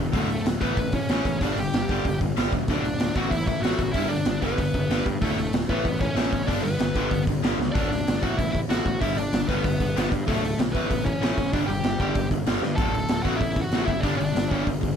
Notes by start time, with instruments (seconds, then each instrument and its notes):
Already playing: overdriven electric guitar G2
0.00 overdriven electric guitar D3
0.12 picked electric bass D1, overdriven electric guitar D2 A2 D3, lead electric guitar A3, kick, open hi-hat
0.17 lead electric guitar A4
0.28 picked electric bass D1, overdriven electric guitar D2 A2, open hi-hat
0.45 picked electric bass D1, overdriven electric guitar D2 A2, snare, open hi-hat
0.60 picked electric bass A1, overdriven electric guitar A2 E3 A3, lead electric guitar B3 B4, kick, open hi-hat
0.77 picked electric bass A1, overdriven electric guitar A2 E3, kick, open hi-hat
0.92 overdriven electric guitar A2 E3, lead electric guitar C#4 C#5, kick, open hi-hat
1.09 picked electric bass A1, overdriven electric guitar A2 E3 A3, snare, open hi-hat
1.25 picked electric bass A1, overdriven electric guitar A2 E3, kick, open hi-hat
1.41 picked electric bass G1, overdriven electric guitar G2 D3 G3, lead electric guitar D4 D5, kick, open hi-hat
1.57 picked electric bass G1, overdriven electric guitar G2 D3, lead electric guitar G4 G5, open hi-hat
1.73 picked electric bass G1, overdriven electric guitar G2 D3, snare, open hi-hat
1.89 picked electric bass G1, overdriven electric guitar G2 D3 G3, kick, open hi-hat
2.05 picked electric bass G1, overdriven electric guitar G2 D3, kick, open hi-hat
2.21 picked electric bass G1, overdriven electric guitar G2 D3, kick, open hi-hat
2.36 picked electric bass G1, overdriven electric guitar G2 D3 G3, snare, open hi-hat
2.53 picked electric bass E1, overdriven electric guitar G2 D3, kick, open hi-hat
2.68 picked electric bass D1, overdriven electric guitar D2 A2 D3, lead electric guitar D4, kick, open hi-hat
2.74 lead electric guitar D5
2.84 picked electric bass D1, overdriven electric guitar D2 A2, open hi-hat
2.99 picked electric bass D1, overdriven electric guitar D2 A2, snare, open hi-hat
3.16 picked electric bass A1, overdriven electric guitar A2 E3 A3, lead electric guitar F#4 F#5, kick, open hi-hat
3.31 picked electric bass A1, overdriven electric guitar A2 E3, lead electric guitar E4 E5, kick, open hi-hat
3.47 overdriven electric guitar A2 E3, lead electric guitar E4 E5, kick, open hi-hat
3.60 picked electric bass A1, overdriven electric guitar A2 E3, lead electric guitar F#4 F#5, open hi-hat
3.65 overdriven electric guitar A3, snare
3.79 picked electric bass A1, overdriven electric guitar A2 E3, kick, open hi-hat
3.92 picked electric bass G1, overdriven electric guitar G2 D3, lead electric guitar E4 E5, kick, open hi-hat
3.96 overdriven electric guitar G3
4.09 picked electric bass G1, overdriven electric guitar G2 D3, lead electric guitar D4 D5, open hi-hat
4.25 picked electric bass G1, overdriven electric guitar G2 D3, snare, open hi-hat
4.42 picked electric bass G1, overdriven electric guitar G2 D3 G3, lead electric guitar B3 B4, kick, open hi-hat
4.58 picked electric bass G1, overdriven electric guitar G2 D3, kick, open hi-hat
4.74 picked electric bass G1, overdriven electric guitar G2 D3, kick, open hi-hat
4.90 picked electric bass G1, overdriven electric guitar G2 D3 G3, snare, open hi-hat
5.06 picked electric bass G2, overdriven electric guitar G2 D3, kick, open hi-hat
5.22 picked electric bass D1, overdriven electric guitar D2 A2 D3, lead electric guitar A3 A4, kick, open hi-hat
5.37 picked electric bass D1, overdriven electric guitar D2 A2, open hi-hat
5.53 picked electric bass D1, overdriven electric guitar D2 A2, snare, open hi-hat
5.69 picked electric bass A1, overdriven electric guitar A2 E3 A3, lead electric guitar B3 B4, kick, open hi-hat
5.85 picked electric bass A1, overdriven electric guitar A2 E3, kick, open hi-hat
6.00 overdriven electric guitar A2 E3, lead electric guitar C#4 C#5, kick, open hi-hat
6.15 picked electric bass A1, overdriven electric guitar A2 E3 A3, snare, open hi-hat
6.32 picked electric bass A1, overdriven electric guitar A2 E3, kick, open hi-hat
6.43 overdriven electric guitar G2, lead electric guitar C#5 D5
6.47 picked electric bass G1, overdriven electric guitar D3 G3, lead electric guitar D4, kick, open hi-hat
6.63 picked electric bass G1, overdriven electric guitar G2 D3, lead electric guitar B3 B4, open hi-hat
6.79 picked electric bass G1, overdriven electric guitar G2 D3, snare, open hi-hat
6.95 picked electric bass G1, overdriven electric guitar G2 D3 G3, kick, open hi-hat
7.11 picked electric bass G1, overdriven electric guitar G2 D3, kick, open hi-hat
7.27 picked electric bass G1, overdriven electric guitar G2 D3, kick, open hi-hat
7.42 picked electric bass G1, overdriven electric guitar G2 D3 G3, snare, open hi-hat
7.58 picked electric bass C#2, overdriven electric guitar G2 D3, snare
7.72 picked electric bass D1, overdriven electric guitar D2 A2 D3, lead electric guitar D4 D5, kick, open hi-hat
7.91 picked electric bass D1, overdriven electric guitar D2 A2, open hi-hat
8.07 picked electric bass G1, overdriven electric guitar D2 A2, snare, open hi-hat
8.22 picked electric bass A1, overdriven electric guitar A2 E3 A3, lead electric guitar F#4 F#5, kick, open hi-hat
8.37 picked electric bass A1, overdriven electric guitar A2 E3, lead electric guitar E4 E5, kick, open hi-hat
8.51 overdriven electric guitar A2 E3, lead electric guitar E4 E5, kick
8.56 open hi-hat
8.69 picked electric bass A1, overdriven electric guitar A2 E3 A3, lead electric guitar F#4 F#5, snare, open hi-hat
8.85 picked electric bass A1, overdriven electric guitar A2 E3, kick, open hi-hat
9.00 picked electric bass G1, overdriven electric guitar G2 D3 G3, lead electric guitar E4 E5, kick, open hi-hat
9.16 picked electric bass G1, overdriven electric guitar G2 D3, lead electric guitar D4 D5, open hi-hat
9.33 picked electric bass G1, overdriven electric guitar G2 D3, snare, open hi-hat
9.48 picked electric bass G1, overdriven electric guitar G2 D3 G3, lead electric guitar B3 B4, kick, open hi-hat
9.64 picked electric bass G1, overdriven electric guitar G2 D3, kick, open hi-hat
9.80 picked electric bass G1, overdriven electric guitar G2 D3, kick, open hi-hat
9.96 picked electric bass G1, overdriven electric guitar G2 D3 G3, snare, open hi-hat
10.11 overdriven electric guitar G2 D3, picked electric bass G2, kick, open hi-hat
10.27 picked electric bass D1, overdriven electric guitar D2 A2 D3, lead electric guitar A3 A4, kick, open hi-hat
10.43 picked electric bass D1, overdriven electric guitar D2 A2, open hi-hat
10.59 picked electric bass B1, overdriven electric guitar D2 A2, snare, open hi-hat
10.72 picked electric bass A1, overdriven electric guitar A2 E3, lead electric guitar B3 B4, kick, open hi-hat
10.76 overdriven electric guitar A3
10.90 picked electric bass A1, overdriven electric guitar A2 E3, kick, open hi-hat
11.05 overdriven electric guitar A2 E3, lead electric guitar C#4 C#5, kick, open hi-hat
11.21 picked electric bass A1, overdriven electric guitar A2 E3 A3, snare, open hi-hat
11.38 picked electric bass A1, overdriven electric guitar A2 E3, kick, open hi-hat
11.53 picked electric bass G1, overdriven electric guitar G2 D3 G3, lead electric guitar D4 D5, kick, open hi-hat
11.66 picked electric bass G1, overdriven electric guitar G2 D3, lead electric guitar G4 G5, open hi-hat
11.84 picked electric bass G1, overdriven electric guitar G2 D3, snare, open hi-hat
12.00 picked electric bass G1, overdriven electric guitar G2 D3 G3, kick, open hi-hat
12.15 picked electric bass G1, overdriven electric guitar G2 D3, kick, open hi-hat
12.31 picked electric bass G1, overdriven electric guitar G2 D3, kick, open hi-hat
12.46 picked electric bass G1, overdriven electric guitar G2 D3 G3, snare, open hi-hat
12.62 picked electric bass G2, overdriven electric guitar G2 D3, snare
12.76 picked electric bass D1, overdriven electric guitar D2 A2 D3, lead electric guitar A4 A5, kick, open hi-hat
12.93 picked electric bass D1, overdriven electric guitar D2 A2, open hi-hat
13.08 picked electric bass D1, overdriven electric guitar D2 A2, snare, open hi-hat
13.22 picked electric bass A1, overdriven electric guitar A2 E3 A3, lead electric guitar F#4 F#5, kick, open hi-hat
13.36 overdriven electric guitar A2 E3, lead electric guitar E4 E5
13.41 picked electric bass A1, kick, open hi-hat
13.55 overdriven electric guitar A2 E3, kick, open hi-hat
13.61 lead electric guitar F#4 F#5
13.71 picked electric bass A1, overdriven electric guitar A2 E3 A3, snare, open hi-hat
13.86 picked electric bass F#1, overdriven electric guitar A2 E3, lead electric guitar E5, kick, open hi-hat
13.90 lead electric guitar E4
14.00 picked electric bass G1, overdriven electric guitar G2 D3 G3, lead electric guitar D4 D5, kick, open hi-hat
14.17 picked electric bass G1, overdriven electric guitar G2 D3, lead electric guitar D4 D5, open hi-hat
14.34 picked electric bass G1, overdriven electric guitar G2 D3, snare, open hi-hat
14.51 picked electric bass G1, overdriven electric guitar G2 D3 G3, lead electric guitar C#5, kick, open hi-hat
14.65 picked electric bass G1, overdriven electric guitar G2 D3, kick, open hi-hat
14.81 picked electric bass G1, overdriven electric guitar G2 D3, kick, open hi-hat